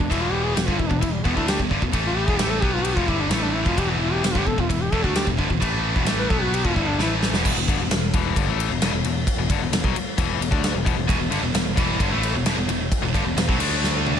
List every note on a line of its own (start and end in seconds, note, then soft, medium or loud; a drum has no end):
0.00 0.13 D4 medium
0.00 kick medium
0.10 0.53 E1 medium
0.10 0.55 E2 medium
0.10 0.55 B2 loud
0.10 0.56 E3 medium
0.10 0.23 E4 medium
0.10 kick medium
0.10 ride bell medium
0.21 0.33 F4 medium
0.32 0.45 G4 loud
0.44 0.58 G#4 medium
0.56 0.67 E1 medium
0.56 0.67 E2 medium
0.56 0.68 B2 medium
0.56 0.68 G4 medium
0.56 snare loud
0.56 ride bell medium
0.67 0.78 G1 medium
0.67 0.78 G2 medium
0.67 0.78 D3 medium
0.67 0.80 F4 medium
0.67 kick loud
0.78 0.90 E1 medium
0.78 0.89 E2 medium
0.78 0.89 B2 medium
0.78 0.91 E4 medium
0.78 kick medium
0.89 1.01 E1 medium
0.89 1.00 E2 medium
0.89 1.00 B2 medium
0.89 1.03 D4 medium
0.89 kick medium
1.01 1.23 E1 medium
1.01 1.20 E2 medium
1.01 1.20 B2 medium
1.01 1.14 E4 medium
1.01 kick medium
1.01 ride bell medium
1.12 1.26 G3 medium
1.24 1.36 E1 medium
1.24 1.36 E2 medium
1.24 1.35 B2 loud
1.24 1.37 B3 medium
1.24 kick loud
1.36 1.58 D2 medium
1.36 1.58 D3 medium
1.36 1.59 A3 medium
1.36 1.59 D4 loud
1.36 1.48 E4 medium
1.36 kick medium
1.48 1.62 G4 medium
1.48 snare loud
1.48 ride bell medium
1.59 1.70 E1 medium
1.59 1.70 E2 medium
1.59 1.70 B2 medium
1.59 kick medium
1.70 1.81 G1 medium
1.70 1.81 G2 medium
1.70 1.82 D3 loud
1.70 kick medium
1.82 1.92 E1 medium
1.82 1.94 E2 medium
1.82 1.92 B2 medium
1.82 kick medium
1.93 2.26 A1 medium
1.93 2.27 A2 loud
1.93 2.27 E3 loud
1.93 2.28 A3 loud
1.93 kick medium
1.93 ride bell medium
2.06 2.18 F4 medium
2.17 2.29 G4 medium
2.27 2.38 E1 medium
2.27 2.39 E2 medium
2.27 2.38 B2 medium
2.27 2.40 G#4 loud
2.27 kick loud
2.38 2.61 A1 medium
2.38 2.61 A2 medium
2.38 2.61 E3 medium
2.38 2.62 A3 loud
2.38 2.51 G4 medium
2.38 snare loud
2.38 ride bell medium
2.50 2.62 A4 loud
2.61 2.95 B1 medium
2.61 2.95 B2 medium
2.61 2.96 F#3 medium
2.61 2.96 B3 loud
2.61 2.75 G4 loud
2.61 kick loud
2.74 2.86 F4 medium
2.85 2.98 G4 loud
2.85 ride bell medium
2.96 3.07 E1 medium
2.96 3.07 E2 medium
2.96 3.08 B2 medium
2.96 3.10 F4 medium
2.96 kick medium
3.08 3.30 G1 medium
3.08 3.31 G2 medium
3.08 3.30 D3 medium
3.08 3.30 G3 loud
3.08 3.23 E4 medium
3.08 kick medium
3.21 3.33 D4 medium
3.30 3.63 A1 medium
3.30 3.65 A2 medium
3.30 3.65 E3 medium
3.30 3.66 A3 loud
3.30 3.46 E4 medium
3.30 snare loud
3.30 ride bell medium
3.44 3.57 D4 medium
3.55 3.69 E4 loud
3.65 3.77 E1 loud
3.65 3.76 E2 medium
3.65 3.76 B2 loud
3.65 3.80 F4 medium
3.65 kick loud
3.77 4.20 E1 loud
3.77 4.22 E2 medium
3.77 4.22 B2 loud
3.77 4.23 E3 loud
3.77 3.92 G4 loud
3.77 kick loud
3.77 ride bell medium
3.90 4.01 B3 medium
4.00 4.14 E4 medium
4.13 4.24 G4 medium
4.23 4.34 E1 medium
4.23 4.34 E2 medium
4.23 4.34 B2 medium
4.23 4.33 G4 medium
4.23 snare loud
4.23 ride bell medium
4.32 4.46 G1 medium
4.32 4.46 G2 medium
4.32 4.46 D3 loud
4.32 4.39 F4 medium
4.32 kick loud
4.37 4.48 G4 medium
4.46 4.57 E1 medium
4.46 4.56 E2 medium
4.46 4.56 B2 medium
4.46 4.62 A4 loud
4.46 kick medium
4.57 4.69 E1 medium
4.57 4.68 E2 medium
4.57 4.68 B2 medium
4.57 4.72 F4 medium
4.57 kick medium
4.69 4.91 E1 medium
4.69 4.88 E2 medium
4.69 4.88 B2 medium
4.69 4.83 E4 medium
4.69 kick medium
4.69 ride bell medium
4.81 4.94 G4 loud
4.92 5.03 E1 medium
4.92 5.03 E2 medium
4.92 5.03 B2 loud
4.92 5.06 A4 loud
4.92 kick loud
5.03 5.25 D2 medium
5.03 5.26 D3 medium
5.03 5.26 A3 loud
5.03 5.26 D4 medium
5.03 5.15 F#4 medium
5.03 kick medium
5.15 5.29 G4 loud
5.15 snare loud
5.15 ride bell medium
5.27 5.37 E1 medium
5.27 5.37 E2 medium
5.27 5.38 B2 medium
5.27 kick medium
5.38 5.49 G1 medium
5.38 5.49 G2 medium
5.38 5.49 D3 loud
5.38 kick medium
5.50 5.60 E1 medium
5.50 5.61 E2 medium
5.50 5.60 B2 medium
5.50 kick medium
5.61 5.93 A1 medium
5.61 5.95 A2 medium
5.61 5.95 E3 medium
5.61 5.95 A3 loud
5.61 kick loud
5.61 ride bell medium
5.95 6.05 E1 medium
5.95 6.06 E2 medium
5.95 6.06 B2 loud
5.95 kick loud
6.05 6.27 A1 medium
6.05 6.29 A2 medium
6.05 6.29 E3 loud
6.05 6.29 A3 loud
6.05 snare loud
6.05 ride bell medium
6.19 6.31 B4 medium
6.30 6.62 B1 medium
6.30 6.64 B2 medium
6.30 6.64 F#3 loud
6.30 6.64 B3 medium
6.30 6.43 A4 medium
6.30 kick loud
6.42 6.56 F#4 medium
6.54 6.68 G4 medium
6.54 ride bell medium
6.65 6.75 E1 medium
6.65 6.75 E2 medium
6.65 6.76 B2 medium
6.65 6.78 F4 medium
6.65 kick loud
6.76 6.97 G1 medium
6.76 6.98 G2 medium
6.76 6.98 D3 medium
6.76 6.99 G3 loud
6.76 6.90 E4 medium
6.76 kick medium
6.88 6.99 D4 medium
6.99 7.31 A1 loud
6.99 7.33 A2 medium
6.99 7.33 E3 loud
6.99 7.33 A3 loud
6.99 7.15 E4 medium
6.99 snare medium
7.23 snare medium
7.33 7.44 E1 loud
7.33 7.43 E2 medium
7.33 7.44 B2 loud
7.33 snare medium
7.45 7.55 E1 loud
7.45 7.55 E2 medium
7.45 7.55 B2 loud
7.45 kick loud
7.45 crash loud
7.55 7.66 E1 medium
7.55 7.68 E2 medium
7.55 7.68 B2 medium
7.68 7.77 G1 loud
7.68 7.78 G2 medium
7.68 7.79 D3 loud
7.68 kick loud
7.68 ride medium
7.77 7.89 E1 medium
7.77 7.91 E2 medium
7.81 7.91 B2 medium
7.89 8.11 E1 medium
7.89 8.09 E2 medium
7.89 8.09 B2 medium
7.89 snare loud
7.89 ride loud
8.14 8.35 E1 medium
8.14 8.36 E2 medium
8.14 8.36 B2 medium
8.14 8.36 E3 loud
8.14 kick loud
8.14 ride medium
8.36 8.46 G1 medium
8.36 8.47 G2 loud
8.36 8.47 D3 loud
8.36 kick loud
8.36 ride loud
8.47 8.68 A1 medium
8.47 8.70 A2 medium
8.47 8.70 E3 medium
8.47 8.70 A3 loud
8.60 ride medium
8.69 8.80 E1 medium
8.69 8.81 E2 medium
8.69 8.82 B2 medium
8.81 8.92 E1 loud
8.81 8.93 E2 medium
8.81 8.93 B2 loud
8.81 snare loud
8.81 ride loud
8.92 9.03 E1 medium
8.92 9.04 E2 medium
8.92 9.05 B2 medium
9.03 9.25 E1 medium
9.03 9.23 E2 medium
9.03 9.23 B2 medium
9.03 ride medium
9.27 kick loud
9.27 ride loud
9.37 9.48 E1 medium
9.37 9.50 E2 medium
9.37 9.50 B2 medium
9.50 9.59 G1 medium
9.50 9.61 G2 loud
9.50 9.61 D3 medium
9.50 kick loud
9.50 ride medium
9.60 9.70 E1 medium
9.60 9.71 E2 medium
9.60 9.72 B2 medium
9.71 9.82 E1 medium
9.71 9.84 E2 medium
9.71 9.83 B2 medium
9.71 snare loud
9.71 ride loud
9.84 9.94 B1 loud
9.84 9.95 B2 medium
9.84 9.95 F#3 loud
9.84 kick loud
9.96 ride medium
10.18 10.38 E1 medium
10.18 10.39 E2 loud
10.18 10.40 B2 loud
10.18 10.41 E3 loud
10.18 kick loud
10.18 ride loud
10.39 10.50 E1 medium
10.39 10.52 E2 medium
10.39 10.50 B2 medium
10.39 ride medium
10.51 10.72 D2 medium
10.51 10.74 D3 medium
10.51 10.74 A3 medium
10.51 10.74 D4 loud
10.51 kick loud
10.64 snare loud
10.64 ride loud
10.73 10.85 E1 medium
10.73 10.84 E2 medium
10.73 10.85 B2 medium
10.85 10.96 E1 medium
10.85 10.95 E2 loud
10.85 10.96 B2 loud
10.85 kick loud
10.85 ride medium
10.96 11.08 E1 medium
10.96 11.06 E2 medium
10.96 11.07 B2 medium
11.07 11.18 E1 loud
11.07 11.18 E2 loud
11.07 11.18 B2 loud
11.07 kick loud
11.07 ride loud
11.19 11.29 E1 medium
11.19 11.30 E2 medium
11.19 11.31 B2 medium
11.30 11.40 G1 loud
11.30 11.42 G2 loud
11.30 11.42 D3 loud
11.30 ride medium
11.41 11.52 E1 medium
11.41 11.53 E2 medium
11.41 11.53 B2 medium
11.53 11.75 E1 medium
11.53 11.73 E2 medium
11.53 11.73 B2 medium
11.53 snare loud
11.53 ride loud
11.76 11.98 E1 loud
11.76 11.99 E2 medium
11.76 11.99 B2 medium
11.76 11.99 E3 loud
11.76 kick loud
11.76 ride medium
12.00 12.10 G1 medium
12.00 12.11 G2 medium
12.00 12.10 D3 loud
12.00 kick loud
12.00 ride loud
12.11 12.32 A1 medium
12.11 12.33 A2 medium
12.11 12.34 E3 loud
12.11 12.34 A3 loud
12.23 ride medium
12.33 12.44 E1 medium
12.33 12.45 E2 medium
12.33 12.46 B2 medium
12.45 12.55 E1 loud
12.45 12.56 E2 medium
12.45 12.56 B2 medium
12.45 snare loud
12.45 ride loud
12.56 12.67 E1 medium
12.56 12.67 E2 medium
12.56 12.68 B2 medium
12.68 12.89 E1 medium
12.68 12.87 E2 medium
12.68 12.87 B2 medium
12.68 ride medium
12.92 kick loud
12.92 ride loud
13.02 13.13 E1 medium
13.02 13.14 E2 medium
13.02 13.14 B2 medium
13.14 13.23 G1 loud
13.14 13.25 G2 medium
13.14 13.25 D3 loud
13.14 kick loud
13.14 ride medium
13.24 13.34 E1 medium
13.24 13.36 E2 medium
13.24 13.36 B2 medium
13.35 13.46 E1 medium
13.35 13.48 E2 medium
13.35 13.47 B2 medium
13.35 snare loud
13.35 ride loud
13.48 13.58 B1 medium
13.48 13.59 B2 loud
13.48 13.59 F#3 loud
13.48 kick loud
13.58 14.20 D2 loud
13.58 14.20 D3 medium
13.58 14.20 A3 medium
13.58 14.20 D4 loud
13.58 crash loud
13.84 snare medium
14.06 high tom medium